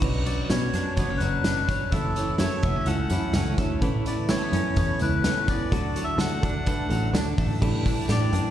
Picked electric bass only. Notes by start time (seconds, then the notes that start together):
0.01 B1
0.51 B2
0.74 F#2
0.97 F#1
1.21 F#1
1.92 F#1
2.40 F#2
2.63 F#1
2.87 C#2
3.11 F#2
3.34 C#2
3.58 D2
3.81 A1
4.29 A2
4.52 F#2
4.76 E2
5.01 C#2
5.72 D2
6.18 D3
6.43 D2
6.90 A1
7.14 D2
7.38 A1
7.62 A1
8.09 A2
8.33 F#2